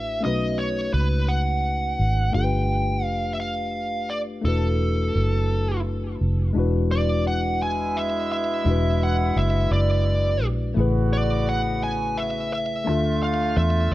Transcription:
0.00 0.24 A1 medium
0.00 0.18 A3 medium
0.00 0.19 D4 soft
0.00 0.20 E4 medium
0.00 0.20 F#4 soft
0.00 0.21 B4 medium
0.00 0.23 E5 medium
0.20 0.90 B1 loud
0.20 2.28 A3 medium
0.20 2.29 C#4 medium
0.20 2.30 D#4 medium
0.20 0.60 D#5 medium
0.25 2.31 F#4 medium
0.25 2.32 B4 medium
0.59 0.93 C#5 medium
0.94 1.95 C#2 medium
0.94 1.29 B4 medium
1.28 2.34 F#5 medium
1.99 2.31 G#1 medium
2.32 3.04 G1 loud
2.32 4.39 A3 medium
2.32 4.40 D4 medium
2.32 4.41 F4 medium
2.32 3.05 G5 medium
2.36 4.41 G4 medium
2.36 2.42 A4 medium
2.44 4.45 B4 medium
3.04 4.40 F1 medium
3.04 3.35 F5 medium
3.33 3.40 E5 medium
3.40 4.12 F5 medium
4.10 4.19 D5 medium
4.42 5.11 E1 loud
4.42 6.49 A3 medium
4.42 6.50 D4 medium
4.42 6.51 E4 medium
4.42 5.81 A4 medium
4.46 6.52 F#4 medium
4.46 6.53 B4 medium
5.15 6.16 F#1 medium
6.21 6.52 F1 medium
6.53 8.62 E1 loud
6.53 8.60 G#3 medium
6.53 8.61 D4 medium
6.53 8.62 E4 medium
6.58 8.63 F#4 medium
6.58 8.64 B4 medium
6.91 7.23 D5 medium
7.27 7.62 F#5 loud
7.60 10.37 B2 medium
7.60 10.37 G#3 medium
7.60 10.37 E4 medium
7.60 7.97 G#5 loud
7.97 8.31 E5 medium
8.32 9.03 E5 medium
8.64 9.32 E1 loud
8.64 10.71 G#3 medium
8.64 10.72 D4 medium
8.64 10.73 E4 medium
8.69 10.73 F#4 medium
8.69 10.74 B4 medium
9.03 9.38 F#5 medium
9.36 9.67 F#1 loud
9.36 9.72 E5 medium
9.71 10.41 F#1 loud
9.71 10.46 D5 medium
10.41 10.73 A#1 medium
10.74 12.87 A1 loud
10.74 12.47 C#3 medium
10.74 12.82 C#3 medium
10.74 12.81 A3 medium
10.74 12.47 B3 medium
10.74 12.83 E4 medium
10.74 12.47 F#4 medium
10.79 12.84 G#4 medium
10.79 12.85 B4 medium
11.13 11.48 D5 medium
11.49 11.83 F#5 medium
11.84 12.18 G#5 loud
12.18 12.52 E5 medium
12.53 13.22 E5 loud
12.84 13.53 D2 loud
12.84 13.94 D3 medium
12.84 13.94 A3 medium
12.84 13.94 D4 medium
12.84 13.94 F4 medium
12.89 13.94 F4 medium
12.89 13.94 A4 medium
13.23 13.57 F5 medium
13.57 13.88 E2 loud
13.57 13.92 E5 medium

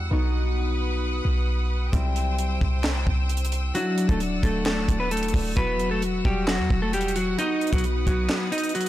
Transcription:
0.00 0.10 E2 loud
0.00 0.16 G3 medium
0.00 0.18 E4 medium
0.00 0.12 F#4 medium
0.00 1.89 F#5 medium
0.11 1.21 B1 loud
0.11 1.99 B3 medium
0.11 2.00 D#4 medium
0.11 1.98 F#4 medium
0.11 1.91 B4 medium
0.11 1.91 D#6 medium
1.25 1.90 B1 loud
1.92 2.59 C2 loud
1.92 3.80 G3 medium
1.92 4.93 C4 medium
1.92 3.76 E4 medium
1.92 3.73 C5 medium
1.92 3.73 G5 medium
1.92 7.35 E6 medium
1.92 kick loud
1.92 closed hi-hat medium
2.16 closed hi-hat medium
2.38 closed hi-hat medium
2.61 3.05 C2 loud
2.61 kick medium
2.84 snare loud
2.84 clap medium
3.07 3.72 C2 loud
3.07 kick medium
3.29 closed hi-hat medium
3.37 closed hi-hat medium
3.45 closed hi-hat medium
3.52 closed hi-hat medium
3.74 5.54 F#3 medium
3.74 4.07 F#3 medium
3.74 6.55 D4 medium
3.74 5.56 E4 medium
3.74 4.07 F#4 loud
3.74 5.55 D5 medium
3.74 5.55 F#5 medium
3.74 closed hi-hat medium
3.98 closed hi-hat medium
4.09 4.42 D1 loud
4.09 4.20 A3 medium
4.09 4.20 A4 medium
4.09 kick loud
4.09 closed hi-hat soft
4.20 closed hi-hat medium
4.43 4.87 D1 loud
4.43 4.65 A3 medium
4.43 4.65 A4 medium
4.43 kick medium
4.43 closed hi-hat medium
4.66 4.98 A3 medium
4.66 4.98 A4 medium
4.66 snare loud
4.66 clap medium
4.89 5.32 D1 loud
4.89 kick medium
4.89 closed hi-hat medium
5.00 5.11 B3 medium
5.00 5.11 B4 medium
5.11 5.54 A3 medium
5.11 5.54 A4 medium
5.11 closed hi-hat medium
5.17 closed hi-hat medium
5.23 closed hi-hat medium
5.28 closed hi-hat medium
5.34 5.56 D1 loud
5.34 kick medium
5.34 open hi-hat medium
5.55 6.22 E1 loud
5.55 7.44 F#3 medium
5.55 5.89 B3 medium
5.55 7.45 E4 medium
5.55 7.37 F#4 medium
5.55 7.40 F#4 medium
5.55 5.89 B4 loud
5.55 8.89 F#5 medium
5.55 kick loud
5.55 closed hi-hat medium
5.79 closed hi-hat medium
5.91 6.02 A3 medium
5.91 6.02 A4 medium
6.02 closed hi-hat medium
6.25 6.61 E1 loud
6.25 6.47 G3 medium
6.25 6.46 G4 medium
6.25 kick medium
6.48 6.80 F#3 medium
6.48 6.80 F#4 medium
6.48 snare loud
6.48 clap medium
6.59 6.70 E2 loud
6.70 7.36 E1 loud
6.70 kick medium
6.82 6.93 A3 medium
6.82 6.93 A4 medium
6.93 7.15 G3 medium
6.93 7.15 G4 medium
6.93 closed hi-hat medium
7.01 closed hi-hat medium
7.08 closed hi-hat medium
7.16 7.38 F#3 medium
7.16 7.37 F#4 medium
7.16 closed hi-hat medium
7.38 8.89 B3 medium
7.38 7.71 D#4 loud
7.38 8.89 D#4 medium
7.38 8.89 F#4 medium
7.38 8.89 B4 medium
7.38 7.71 D#5 medium
7.38 8.89 D#6 medium
7.38 closed hi-hat medium
7.61 closed hi-hat soft
7.67 closed hi-hat medium
7.73 8.05 B1 loud
7.73 7.84 F#3 medium
7.73 7.83 F#4 medium
7.73 kick loud
7.73 closed hi-hat medium
7.78 closed hi-hat medium
7.84 closed hi-hat medium
8.07 8.29 B1 loud
8.07 8.50 F#3 medium
8.07 8.50 F#4 medium
8.07 kick medium
8.07 closed hi-hat medium
8.29 snare loud
8.29 clap medium
8.52 8.73 D#4 medium
8.52 8.74 D#5 medium
8.52 closed hi-hat medium
8.58 closed hi-hat medium
8.64 closed hi-hat medium
8.69 closed hi-hat medium
8.75 8.89 F#3 medium
8.75 8.89 F#4 medium
8.75 closed hi-hat medium
8.81 closed hi-hat medium

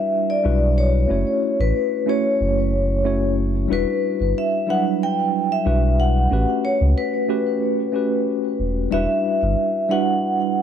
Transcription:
0.00 0.44 G3 medium
0.00 0.44 D4 medium
0.00 0.44 E4 medium
0.00 0.45 F#4 medium
0.00 0.46 B4 medium
0.00 0.31 E5 loud
0.30 0.79 D5 medium
0.44 1.06 B1 medium
0.44 1.05 G3 medium
0.44 1.06 D4 medium
0.44 1.06 E4 medium
0.44 1.06 F#4 medium
0.44 1.06 B4 medium
0.78 1.56 C#5 medium
1.08 1.24 F#1 loud
1.08 2.03 A3 medium
1.08 2.03 C#4 medium
1.08 2.04 E4 medium
1.08 2.04 F#4 medium
1.08 2.04 C#5 medium
1.60 1.73 A1 medium
1.60 2.10 B4 medium
2.06 3.01 A3 medium
2.06 3.01 C#4 medium
2.06 3.02 E4 medium
2.06 3.02 F#4 medium
2.06 3.02 C#5 medium
2.06 3.35 C#5 medium
2.41 3.67 F#1 loud
3.05 3.66 A3 medium
3.05 3.66 C#4 medium
3.05 3.67 E4 medium
3.05 3.67 F#4 medium
3.05 3.67 C#5 medium
3.68 3.85 E1 loud
3.68 4.63 G3 medium
3.68 4.64 D4 medium
3.68 4.64 E4 medium
3.68 4.65 F#4 medium
3.68 4.65 B4 medium
3.73 4.39 B4 medium
4.20 4.33 G1 medium
4.38 4.70 E5 medium
4.67 5.63 F#3 medium
4.67 5.62 G3 medium
4.67 5.62 D4 medium
4.67 5.63 E4 medium
4.67 5.63 B4 medium
4.67 4.84 F#5 loud
5.03 5.53 G5 loud
5.52 6.01 E5 medium
5.65 6.27 B1 medium
5.65 6.27 G3 medium
5.65 6.27 D4 medium
5.65 6.28 E4 medium
5.65 6.28 F#4 medium
5.65 6.28 B4 medium
6.00 6.66 F#5 medium
6.30 6.46 A1 loud
6.30 7.25 A3 medium
6.30 7.25 C#4 medium
6.30 7.26 F#4 medium
6.30 7.26 G4 medium
6.30 7.26 B4 medium
6.65 6.79 C#5 medium
6.81 6.94 C#2 loud
6.98 8.56 B4 medium
7.28 7.91 A3 medium
7.28 7.91 C#4 medium
7.28 7.91 F#4 medium
7.28 7.92 G4 medium
7.28 7.92 B4 medium
7.92 8.87 A3 medium
7.92 8.88 C#4 medium
7.92 8.88 F#4 medium
7.92 8.89 G4 medium
7.92 8.89 B4 medium
8.59 8.87 E1 medium
8.91 9.07 E1 loud
8.91 9.86 G3 medium
8.91 9.86 D4 medium
8.91 9.86 E4 medium
8.91 9.87 F#4 medium
8.91 9.87 B4 medium
8.91 9.93 E5 loud
9.42 9.55 G1 loud
9.89 10.62 G3 medium
9.89 10.62 D4 medium
9.89 10.62 E4 medium
9.89 10.62 F#4 medium
9.89 10.62 B4 medium
9.89 10.62 F#5 loud

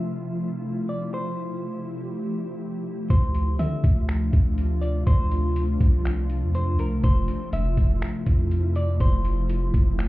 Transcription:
0.00 3.06 C3 medium
0.00 3.06 F3 medium
0.00 3.06 A3 medium
0.00 3.06 E4 medium
0.00 1.09 F4 medium
0.00 0.12 E5 medium
0.89 1.12 D5 medium
1.14 3.08 G4 medium
1.14 2.08 C5 loud
3.10 3.57 D2 loud
3.10 10.08 C3 medium
3.10 10.08 F3 medium
3.10 10.08 A3 medium
3.10 7.00 D4 medium
3.10 7.00 F4 medium
3.10 3.56 C5 loud
3.10 kick loud
3.10 closed hi-hat medium
3.35 closed hi-hat medium
3.59 3.83 D3 loud
3.59 4.06 E5 medium
3.59 closed hi-hat medium
3.84 4.31 D2 loud
3.84 kick loud
3.84 closed hi-hat medium
4.09 finger snap loud
4.09 closed hi-hat medium
4.33 5.04 D2 loud
4.33 kick loud
4.33 closed hi-hat medium
4.58 closed hi-hat medium
4.81 5.05 D5 medium
4.81 closed hi-hat medium
5.07 5.78 D2 loud
5.07 6.01 C5 loud
5.07 kick loud
5.07 closed hi-hat medium
5.31 closed hi-hat medium
5.56 closed hi-hat medium
5.81 6.44 C2 loud
5.81 kick loud
5.81 closed hi-hat medium
6.05 finger snap loud
6.05 closed hi-hat medium
6.30 closed hi-hat medium
6.42 6.74 F2 loud
6.55 6.78 C5 medium
6.55 closed hi-hat medium
6.73 7.02 C2 loud
6.79 7.03 A#4 medium
6.79 closed hi-hat medium
7.04 7.27 F1 loud
7.04 10.08 E4 medium
7.04 10.08 F4 medium
7.04 7.50 C5 medium
7.04 kick loud
7.04 closed hi-hat medium
7.28 closed hi-hat medium
7.53 7.76 F1 loud
7.53 7.99 E5 medium
7.53 closed hi-hat medium
7.77 8.01 F1 loud
7.77 kick loud
7.77 closed hi-hat medium
8.02 finger snap loud
8.02 closed hi-hat medium
8.26 8.97 F2 loud
8.26 kick loud
8.26 closed hi-hat medium
8.51 closed hi-hat medium
8.76 8.99 D5 medium
8.76 closed hi-hat medium
9.00 9.71 F1 loud
9.00 9.95 C5 loud
9.00 kick loud
9.00 closed hi-hat medium
9.25 closed hi-hat medium
9.49 closed hi-hat medium
9.74 10.08 F1 loud
9.74 kick loud
9.74 closed hi-hat medium
9.99 finger snap loud
9.99 closed hi-hat medium

